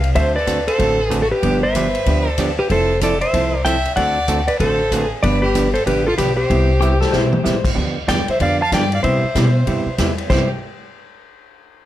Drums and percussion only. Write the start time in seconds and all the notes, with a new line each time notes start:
0.04 ride
0.15 kick, ride
0.47 kick, hi-hat pedal, ride
0.68 ride
0.79 kick, ride
1.11 kick, hi-hat pedal, ride
1.43 kick, ride
1.75 kick, hi-hat pedal, ride
1.95 ride
2.06 kick, ride
2.38 kick, hi-hat pedal, ride
2.70 kick, ride
3.01 kick, hi-hat pedal, ride
3.21 ride
3.33 kick, ride
3.65 kick, hi-hat pedal, ride
3.85 ride
3.97 kick, ride
4.28 kick, hi-hat pedal, ride
4.48 ride
4.60 kick, ride
4.91 kick, hi-hat pedal, ride
5.23 kick, ride
5.55 kick, hi-hat pedal, ride
5.75 ride
5.87 kick, ride
6.18 kick, hi-hat pedal, ride
6.50 kick, ride
6.81 hi-hat pedal
7.01 snare
7.13 snare
7.33 mid tom
7.45 snare, hi-hat pedal
7.65 kick, crash
7.76 kick
8.08 kick, snare, hi-hat pedal, ride
8.28 ride
8.40 kick, ride
8.72 kick, snare, hi-hat pedal, ride
8.92 ride
9.04 kick, ride
9.35 kick, snare, hi-hat pedal, ride
9.67 kick, ride
9.98 kick, snare, hi-hat pedal, ride
10.18 ride
10.30 kick, snare, crash